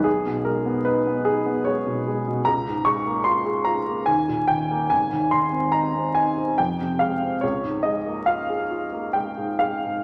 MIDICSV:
0, 0, Header, 1, 2, 480
1, 0, Start_track
1, 0, Tempo, 804290
1, 34, Time_signature, 3, 2, 24, 8
1, 2434, Tempo, 828729
1, 3394, Tempo, 846262
1, 4834, Tempo, 875912
1, 5314, Tempo, 931677
1, 5770, End_track
2, 0, Start_track
2, 0, Title_t, "Upright piano"
2, 0, Program_c, 0, 0
2, 0, Control_c, 0, 64, 127
2, 0, Note_on_c, 0, 35, 50
2, 23, Note_on_c, 0, 68, 71
2, 43, Control_c, 0, 64, 0
2, 136, Control_c, 0, 64, 127
2, 155, Note_on_c, 0, 47, 34
2, 266, Note_on_c, 0, 70, 67
2, 268, Note_off_c, 0, 68, 0
2, 275, Note_on_c, 0, 56, 37
2, 347, Note_off_c, 0, 47, 0
2, 394, Note_on_c, 0, 59, 38
2, 467, Note_off_c, 0, 56, 0
2, 506, Note_on_c, 0, 71, 69
2, 511, Note_off_c, 0, 70, 0
2, 516, Note_on_c, 0, 63, 39
2, 587, Note_off_c, 0, 59, 0
2, 637, Note_on_c, 0, 59, 37
2, 709, Note_off_c, 0, 63, 0
2, 745, Note_on_c, 0, 68, 71
2, 752, Note_off_c, 0, 71, 0
2, 756, Note_on_c, 0, 63, 37
2, 829, Note_off_c, 0, 59, 0
2, 872, Note_on_c, 0, 59, 41
2, 948, Note_off_c, 0, 63, 0
2, 982, Note_on_c, 0, 73, 68
2, 991, Note_off_c, 0, 68, 0
2, 995, Note_on_c, 0, 56, 38
2, 1066, Note_off_c, 0, 59, 0
2, 1115, Note_on_c, 0, 47, 35
2, 1186, Note_off_c, 0, 56, 0
2, 1227, Note_off_c, 0, 73, 0
2, 1237, Note_on_c, 0, 56, 39
2, 1306, Note_off_c, 0, 47, 0
2, 1358, Note_on_c, 0, 47, 37
2, 1427, Note_off_c, 0, 56, 0
2, 1430, Note_off_c, 0, 35, 0
2, 1461, Note_on_c, 0, 82, 80
2, 1472, Note_on_c, 0, 37, 45
2, 1476, Note_off_c, 0, 47, 0
2, 1484, Control_c, 0, 64, 0
2, 1576, Control_c, 0, 64, 127
2, 1597, Note_on_c, 0, 44, 37
2, 1700, Note_on_c, 0, 85, 73
2, 1707, Note_off_c, 0, 82, 0
2, 1709, Note_on_c, 0, 56, 40
2, 1787, Note_off_c, 0, 44, 0
2, 1829, Note_on_c, 0, 58, 43
2, 1902, Note_off_c, 0, 56, 0
2, 1934, Note_on_c, 0, 84, 78
2, 1945, Note_off_c, 0, 85, 0
2, 1946, Note_on_c, 0, 65, 40
2, 2021, Note_off_c, 0, 58, 0
2, 2063, Note_on_c, 0, 68, 39
2, 2140, Note_off_c, 0, 65, 0
2, 2175, Note_on_c, 0, 82, 73
2, 2182, Note_off_c, 0, 84, 0
2, 2185, Note_on_c, 0, 65, 38
2, 2259, Note_off_c, 0, 68, 0
2, 2305, Note_on_c, 0, 58, 40
2, 2382, Note_off_c, 0, 65, 0
2, 2409, Note_off_c, 0, 37, 0
2, 2421, Note_on_c, 0, 80, 77
2, 2426, Note_off_c, 0, 82, 0
2, 2430, Note_on_c, 0, 39, 45
2, 2431, Note_off_c, 0, 58, 0
2, 2441, Control_c, 0, 64, 0
2, 2543, Control_c, 0, 64, 127
2, 2553, Note_on_c, 0, 46, 38
2, 2663, Note_on_c, 0, 79, 75
2, 2668, Note_off_c, 0, 80, 0
2, 2678, Note_on_c, 0, 51, 38
2, 2746, Note_off_c, 0, 46, 0
2, 2799, Note_on_c, 0, 58, 37
2, 2868, Note_off_c, 0, 51, 0
2, 2898, Note_off_c, 0, 39, 0
2, 2909, Note_off_c, 0, 79, 0
2, 2909, Note_on_c, 0, 80, 76
2, 2916, Note_off_c, 0, 58, 0
2, 2920, Note_on_c, 0, 32, 47
2, 2925, Control_c, 0, 64, 0
2, 3015, Control_c, 0, 64, 127
2, 3039, Note_on_c, 0, 39, 37
2, 3148, Note_on_c, 0, 84, 72
2, 3149, Note_off_c, 0, 80, 0
2, 3159, Note_on_c, 0, 51, 35
2, 3227, Note_off_c, 0, 39, 0
2, 3272, Note_on_c, 0, 60, 41
2, 3348, Note_off_c, 0, 51, 0
2, 3383, Note_on_c, 0, 82, 75
2, 3392, Note_off_c, 0, 84, 0
2, 3392, Note_on_c, 0, 63, 38
2, 3466, Note_off_c, 0, 60, 0
2, 3514, Note_on_c, 0, 60, 39
2, 3587, Note_off_c, 0, 63, 0
2, 3626, Note_on_c, 0, 80, 74
2, 3631, Note_off_c, 0, 82, 0
2, 3635, Note_on_c, 0, 63, 38
2, 3709, Note_off_c, 0, 60, 0
2, 3759, Note_on_c, 0, 60, 38
2, 3829, Note_off_c, 0, 63, 0
2, 3857, Note_off_c, 0, 32, 0
2, 3872, Note_off_c, 0, 80, 0
2, 3872, Note_on_c, 0, 79, 69
2, 3878, Note_off_c, 0, 60, 0
2, 3884, Note_on_c, 0, 41, 47
2, 3887, Control_c, 0, 64, 0
2, 3980, Control_c, 0, 64, 127
2, 4000, Note_on_c, 0, 48, 35
2, 4107, Note_on_c, 0, 77, 63
2, 4113, Note_off_c, 0, 79, 0
2, 4116, Note_on_c, 0, 56, 36
2, 4188, Note_off_c, 0, 48, 0
2, 4238, Note_on_c, 0, 60, 37
2, 4305, Note_off_c, 0, 56, 0
2, 4341, Note_off_c, 0, 41, 0
2, 4344, Note_on_c, 0, 73, 71
2, 4348, Note_off_c, 0, 77, 0
2, 4354, Note_off_c, 0, 60, 0
2, 4357, Note_on_c, 0, 37, 47
2, 4361, Control_c, 0, 64, 0
2, 4462, Control_c, 0, 64, 127
2, 4469, Note_on_c, 0, 44, 36
2, 4580, Note_on_c, 0, 75, 65
2, 4587, Note_off_c, 0, 73, 0
2, 4591, Note_on_c, 0, 56, 31
2, 4663, Note_off_c, 0, 44, 0
2, 4715, Note_on_c, 0, 58, 33
2, 4786, Note_off_c, 0, 56, 0
2, 4826, Note_on_c, 0, 77, 71
2, 4829, Note_off_c, 0, 75, 0
2, 4836, Note_on_c, 0, 65, 37
2, 4906, Note_off_c, 0, 58, 0
2, 4954, Note_on_c, 0, 68, 36
2, 5025, Note_off_c, 0, 65, 0
2, 5073, Note_on_c, 0, 65, 36
2, 5144, Note_off_c, 0, 68, 0
2, 5190, Note_on_c, 0, 58, 33
2, 5266, Note_off_c, 0, 65, 0
2, 5304, Note_on_c, 0, 79, 61
2, 5310, Note_off_c, 0, 77, 0
2, 5314, Note_on_c, 0, 56, 29
2, 5383, Note_off_c, 0, 58, 0
2, 5430, Note_on_c, 0, 44, 29
2, 5502, Note_off_c, 0, 56, 0
2, 5540, Note_on_c, 0, 77, 61
2, 5546, Note_off_c, 0, 79, 0
2, 5549, Note_on_c, 0, 56, 30
2, 5622, Note_off_c, 0, 44, 0
2, 5674, Note_on_c, 0, 44, 29
2, 5745, Note_off_c, 0, 56, 0
2, 5770, Note_off_c, 0, 37, 0
2, 5770, Note_off_c, 0, 44, 0
2, 5770, Note_off_c, 0, 77, 0
2, 5770, End_track
0, 0, End_of_file